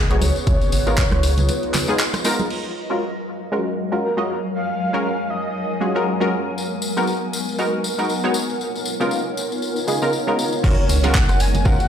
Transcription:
Already playing: analog synth pad B3 F#4 G#4, soft synth lead G#4, ambient pad G#4 B4 F#5
0.10 sub bass B1, synth stab G#3 B3 D#4 F#4 C#5, closed hi-hat
0.21 sub bass C#2, soft synth lead C#5, open hi-hat, tambourine, muted conga, high conga
0.36 closed hi-hat, tambourine
0.47 sub bass C#2, analog synth pad D#4 F4, ambient pad F4, kick, closed hi-hat, tambourine, muted conga
0.61 closed hi-hat, tambourine
0.72 sub bass G#1, open hi-hat, tambourine, low conga
0.81 ambient pad D#5
0.86 synth stab G#3 B3 D#4 F4 A#4, closed hi-hat, tambourine, muted conga, high conga
0.98 kick, clap, closed hi-hat, tambourine
1.11 sub bass C#2, cross-stick, closed hi-hat, muted conga
1.23 open hi-hat, tambourine
1.37 closed hi-hat, tambourine, high conga, low conga
1.49 closed hi-hat, tambourine, muted conga
1.63 closed hi-hat
1.74 clap, open hi-hat, tambourine, muted conga, low conga
1.88 synth stab G#3 B3 D#4 F4 G#4, tambourine
1.99 clap, closed hi-hat, tambourine
2.14 cross-stick, closed hi-hat, tambourine, muted conga
2.24 synth stab G#3 B3 D#4 F4 A#4, open hi-hat, tambourine
2.39 closed hi-hat, tambourine, muted conga
2.50 ambient pad F#3, analog synth pad F#3 G#3 A#4 F5, crash
2.84 ambient pad A#4
2.90 synth stab G#3 C#4 F4 F#4 A#4
3.11 ambient pad F5
3.26 ambient pad G#5
3.52 synth stab G#3 C#4 F4 F#4 A#4
3.92 synth stab G#3 C#4 F4 F#4 A#4
4.03 soft synth lead A#4
4.17 synth stab G#3 C#4 F4 F#4 D#5
4.28 soft synth lead A#4
4.54 soft synth lead F5
4.93 synth stab G#3 C#4 F4 F#4 A#4
5.30 soft synth lead D#5
5.80 synth stab G#3 C#4 F4 F#4 G#4
5.95 synth stab G#3 C#4 F4 F#4 A#4
6.20 synth stab G#3 C#4 F4 F#4 A#4
6.57 analog synth pad B3, ambient pad B3, tambourine
6.82 tambourine
6.97 synth stab G#3 B3 D#4 F#4 A#4, tambourine
7.07 ambient pad F#5, tambourine
7.33 tambourine
7.49 tambourine
7.58 synth stab G#3 B3 D#4 F#4 A#4, tambourine
7.84 tambourine
7.98 synth stab G#3 B3 D#4 F#4 A#4, tambourine
8.09 tambourine
8.24 synth stab G#3 B3 D#4 F#4 C#5
8.34 tambourine
8.50 tambourine
8.61 analog synth pad B3 D#4 F4 C#5, tambourine
8.71 ambient pad D#4
8.75 tambourine
8.85 tambourine
9.00 synth stab C#3 G#3 B3 D#4 F4 A#4, tambourine
9.08 ambient pad C#5, tambourine
9.37 tambourine
9.52 ambient pad D#5, tambourine
9.62 tambourine
9.76 tambourine
9.87 synth stab C#3 G#3 B3 D#4 F4 G#4, tambourine
10.02 synth stab C#3 G#3 B3 D#4 F4 A#4, tambourine
10.13 tambourine
10.27 synth stab C#3 G#3 B3 D#4 F4 A#4
10.39 tambourine
10.53 tambourine
10.63 sub bass F#1, ambient pad F#3, synth stab G#3 C#4 F4 F#4 A#4, analog synth pad G#3 A#4 G#5, soft synth lead C#5, kick, crash, tambourine
10.89 sub bass C#2, open hi-hat, tambourine, low conga
11.03 synth stab G#3 C#4 F4 F#4 A#4, soft synth lead F#5, closed hi-hat, tambourine, high conga
11.15 kick, clap, tambourine
11.28 sub bass F#1, ambient pad G#5, cross-stick, closed hi-hat, tambourine
11.40 soft synth lead G#5, open hi-hat, tambourine
11.54 closed hi-hat, tambourine, high conga, low conga
11.65 synth stab G#3 C#4 F4 F#4 A#4, soft synth lead F#5, kick, tambourine
11.80 closed hi-hat, tambourine

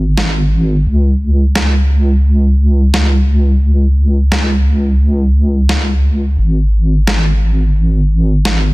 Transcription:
Already playing: wobble bass G#1
0.18 snare
0.86 wobble bass C#2
1.55 snare
2.94 snare
4.32 snare
5.69 snare
6.38 wobble bass G#1
7.07 snare
8.45 snare

